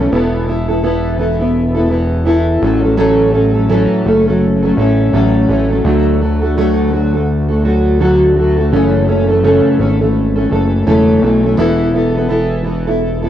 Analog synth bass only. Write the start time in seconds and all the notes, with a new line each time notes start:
0.12 E1
2.62 A1
4.05 F#1
4.77 A1
5.13 A1
5.48 A1
5.84 D2
8.72 F#1
9.79 G#1
10.51 F#1
10.87 E1
11.22 B1
11.58 E1